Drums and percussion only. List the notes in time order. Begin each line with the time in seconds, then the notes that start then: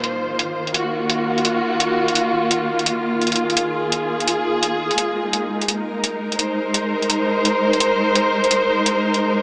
0.04 closed hi-hat
0.39 closed hi-hat
0.67 closed hi-hat
0.74 closed hi-hat
1.10 closed hi-hat
1.38 closed hi-hat
1.45 closed hi-hat
1.80 closed hi-hat
2.08 closed hi-hat
2.15 closed hi-hat
2.51 closed hi-hat
2.79 closed hi-hat
2.86 closed hi-hat
3.21 closed hi-hat
3.27 closed hi-hat
3.32 closed hi-hat
3.36 closed hi-hat
3.50 closed hi-hat
3.57 closed hi-hat
3.92 closed hi-hat
4.20 closed hi-hat
4.28 closed hi-hat
4.63 closed hi-hat
4.91 closed hi-hat
4.98 closed hi-hat
5.33 closed hi-hat
5.61 closed hi-hat
5.68 closed hi-hat
6.04 closed hi-hat
6.32 closed hi-hat
6.39 closed hi-hat
6.74 closed hi-hat
7.02 closed hi-hat
7.10 closed hi-hat
7.45 closed hi-hat
7.73 closed hi-hat
7.80 closed hi-hat
8.15 closed hi-hat
8.44 closed hi-hat
8.51 closed hi-hat
8.86 closed hi-hat
9.14 closed hi-hat